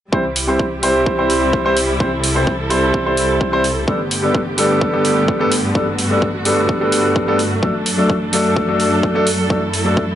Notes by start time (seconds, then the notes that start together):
0.12 C2 C3 G3 C4 E4 G4 C5, kick
0.36 open hi-hat
0.47 G3 C4 E4 C5
0.59 kick
0.82 G3 C4 E4 C5, open hi-hat
1.06 kick
1.18 G3 C4 E4 C5
1.30 open hi-hat
1.53 kick
1.65 G3 C4 E4 C5
1.77 open hi-hat
2.00 G3 C4 E4 A4 C5, kick
2.24 open hi-hat
2.35 G3 C4 E4 C5
2.47 kick
2.70 G3 C4 E4 C5, open hi-hat
2.94 kick
3.05 G3 C4 E4 C5
3.17 open hi-hat
3.41 kick
3.52 G3 C4 E4 C5
3.64 open hi-hat
3.87 G2 D3 G3 A3 B3 D4 G4 A4, kick
4.11 open hi-hat
4.22 G3 B3 D4 A4
4.35 kick
4.57 G3 B3 D4 A4, open hi-hat
4.81 kick
4.92 G3 B3 D4 A4
5.05 open hi-hat
5.28 kick
5.39 G3 B3 D4 A4
5.52 open hi-hat
5.75 G3 B3 D4 F#4 A4, kick
5.99 open hi-hat
6.10 G3 B3 D4 A4
6.22 kick
6.45 G3 B3 D4 A4, open hi-hat
6.69 kick
6.80 G3 B3 D4 A4
6.92 open hi-hat
7.16 kick
7.27 G3 B3 D4 A4
7.39 open hi-hat
7.62 F#2 F#3 A3 D4 A4, kick
7.86 open hi-hat
7.97 F#3 A3 D4 A4
8.10 kick
8.32 F#3 A3 D4 A4, open hi-hat
8.56 kick
8.68 F#3 A3 D4 A4
8.80 open hi-hat
9.03 kick
9.14 F#3 A3 D4 A4
9.27 open hi-hat
9.50 F#3 A3 D4 E4 A4, kick
9.74 open hi-hat
9.85 F#3 A3 D4 A4
9.97 kick